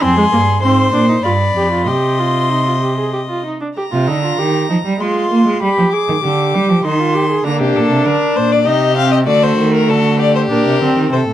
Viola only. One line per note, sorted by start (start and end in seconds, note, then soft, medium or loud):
0.03 0.17 C4 medium
0.18 0.24 G#3 medium
0.33 0.41 A#3 medium
0.63 0.93 C4 medium
0.94 1.08 D4 medium
1.09 1.15 D#4 medium
1.25 1.33 F4 medium
1.56 1.71 G4 medium
1.72 1.89 F4 medium
1.88 2.21 G4 medium
2.19 2.53 F4 medium
2.51 2.66 D#4 medium
2.67 2.73 F4 medium
2.82 2.98 G4 medium
2.98 3.13 G#4 medium
3.13 3.20 G4 medium
3.29 3.45 F4 medium
3.46 3.61 D#4 medium
3.61 3.68 D4 medium
3.77 3.83 G4 medium
3.92 4.10 F4 medium
4.08 4.23 D#4 medium
4.23 4.40 F4 medium
4.39 4.70 G4 medium
4.70 4.78 D#4 medium
5.01 5.61 F4 medium
5.62 5.95 G4 medium
5.93 6.23 G#4 medium
6.24 6.86 G4 medium
6.85 7.01 D#4 medium
7.00 7.16 F4 medium
7.15 7.29 G4 medium
7.30 7.46 G#4 medium
7.45 8.66 D4 medium
8.66 8.96 D#4 medium
8.97 9.27 C4 medium
9.28 10.48 A3 medium
10.51 10.81 D4 medium
10.82 11.12 C4 medium